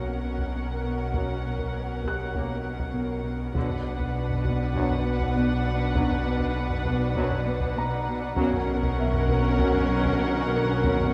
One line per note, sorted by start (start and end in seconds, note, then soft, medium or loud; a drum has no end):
0.00 3.51 B1 soft
0.00 3.51 B1 medium
0.00 0.16 F#2 soft
0.00 0.12 B2 soft
0.00 3.52 B2 medium
0.00 0.16 F#3 soft
0.00 0.15 A#3 soft
0.00 0.15 C#4 soft
0.00 3.52 C#4 soft
0.00 3.52 A#4 soft
0.00 3.55 A#4 soft
0.00 3.55 C#5 soft
0.00 3.51 F#5 soft
0.00 3.57 C#6 soft
0.00 1.12 A#6 soft
0.24 0.42 B3 soft
0.38 taiko medium
0.54 0.72 B2 medium
0.84 1.02 B2 soft
1.13 1.36 F#2 medium
1.13 1.32 B2 medium
1.13 1.36 F#3 medium
1.13 1.35 A#3 soft
1.13 1.35 C#4 medium
1.13 taiko medium
1.44 1.62 B2 soft
1.59 taiko medium
1.74 1.93 B3 soft
2.05 2.23 B2 medium
2.05 3.82 G4 soft
2.05 3.83 F#6 soft
2.05 taiko medium
2.35 2.56 F#2 medium
2.35 2.54 B2 medium
2.35 2.57 A#3 medium
2.35 2.57 C#4 medium
2.35 taiko medium
2.65 2.83 B3 soft
2.80 taiko medium
2.95 3.13 B2 medium
3.24 3.43 B2 medium
3.54 8.34 B1 medium
3.54 8.35 B1 medium
3.54 3.76 F#2 medium
3.54 3.73 B2 medium
3.54 4.42 B2 medium
3.54 8.35 B2 medium
3.54 3.76 D3 medium
3.54 3.76 B3 medium
3.54 3.76 D4 medium
3.54 8.35 D4 medium
3.54 8.39 B4 soft
3.54 8.35 B4 medium
3.54 8.39 D5 soft
3.54 8.34 F#5 medium
3.54 8.35 F#5 soft
3.54 taiko medium
3.70 taiko low soft
3.85 4.04 B2 medium
4.00 taiko medium
4.15 4.34 B3 medium
4.30 taiko low soft
4.45 4.63 B2 medium
4.45 taiko medium
4.75 4.97 F#2 medium
4.75 4.94 B2 medium
4.75 4.97 F#3 medium
4.75 4.98 B3 medium
4.75 4.98 D4 medium
4.75 taiko medium
4.91 taiko low soft
5.06 5.25 B3 medium
5.21 taiko medium
5.37 5.55 B2 medium
5.67 5.85 B2 medium
5.94 6.16 F#2 medium
5.94 6.15 B2 medium
5.94 6.17 F#3 medium
5.94 6.17 B3 medium
5.94 6.17 D4 medium
5.94 taiko loud
6.11 taiko low soft
6.27 6.45 B2 medium
6.40 taiko medium
6.57 6.75 B3 medium
6.70 taiko low soft
6.85 7.05 B2 loud
6.85 taiko medium
7.16 7.38 F#2 medium
7.16 7.35 B2 medium
7.16 7.37 F#3 medium
7.16 7.38 B3 medium
7.16 7.38 D4 medium
7.16 taiko medium
7.31 taiko low soft
7.46 7.65 B3 medium
7.60 taiko medium
7.76 7.95 B2 loud
7.76 9.57 A#5 medium
8.07 8.26 B2 medium
8.36 11.14 B1 medium
8.36 11.14 B1 loud
8.36 8.59 F#2 medium
8.36 11.14 B2 medium
8.36 8.44 B2 soft
8.36 8.57 B2 medium
8.36 8.58 F#3 medium
8.36 8.59 A#3 medium
8.36 8.58 C#4 medium
8.36 11.14 C#4 loud
8.36 11.14 A#4 medium
8.36 11.14 C#5 medium
8.36 11.14 F#5 medium
8.36 taiko medium
8.45 8.52 B2 soft
8.52 8.59 B2 soft
8.52 taiko low soft
8.60 8.67 B2 soft
8.68 8.75 B2 soft
8.68 8.87 B2 medium
8.76 8.83 B2 soft
8.83 8.89 B2 soft
8.83 taiko medium
8.91 8.97 B2 soft
8.98 9.05 B2 soft
8.98 9.17 B3 medium
8.98 10.81 E5 medium
9.07 9.12 B2 soft
9.14 9.20 B2 soft
9.14 taiko low medium
9.22 9.28 B2 soft
9.28 9.36 B2 soft
9.28 9.48 B2 medium
9.28 taiko medium
9.37 9.43 B2 soft
9.44 9.50 B2 soft
9.52 9.58 B2 soft
9.59 9.82 F#2 medium
9.59 9.78 B2 medium
9.59 9.82 F#3 medium
9.59 9.81 A#3 medium
9.59 9.81 C#4 medium
9.59 taiko medium
9.67 9.73 B2 soft
9.74 9.80 B2 soft
9.74 taiko low soft
9.81 9.87 B2 soft
9.88 9.95 B2 soft
9.88 10.09 B3 medium
9.96 10.02 B2 soft
10.03 10.09 B2 soft
10.03 taiko medium
10.11 10.17 B2 soft
10.18 10.25 B2 medium
10.18 10.40 B2 medium
10.34 10.40 B2 medium
10.41 10.47 B2 medium
10.49 10.56 B2 medium
10.53 10.72 B2 medium
10.53 10.64 B2 medium
10.65 10.72 B2 medium
10.73 10.79 B2 medium
10.80 11.06 F#2 medium
10.80 10.86 B2 medium
10.80 11.06 F#3 medium
10.80 11.06 A#3 medium
10.80 11.06 C#4 medium
10.80 taiko medium
10.85 11.04 B2 medium
10.85 10.95 B2 medium
10.96 11.02 B2 medium
11.00 11.09 B2 medium
11.00 taiko low soft
11.11 11.14 B2 medium